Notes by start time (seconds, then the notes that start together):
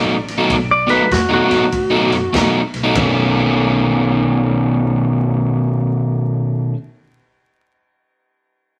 Already playing: A1 B2 F#3 A3 D#4 D5
0.28 snare, ride
0.38 B2 F#3 A3 D#4
0.50 B1, kick, ride
0.71 D5
0.87 B2 F#3 A3 D#4 B4, snare, ride
1.11 E2 F#4, kick, snare, ride
1.29 B2 F#3 A3 D#4
1.34 F#4
1.49 G#2 B2 F#3 A3 D#4, snare, ride
1.72 A2, kick, ride
1.90 B2 F#3 A3 D#4
2.12 F#2, snare, ride
2.33 E2 B2 F#3 A3 D#4, kick, snare, ride
2.74 B1, snare, ride
2.83 B2 F#3 A3 D#4
2.94 B1 B2 D#3 A3 C#4, kick, floor tom, ride bell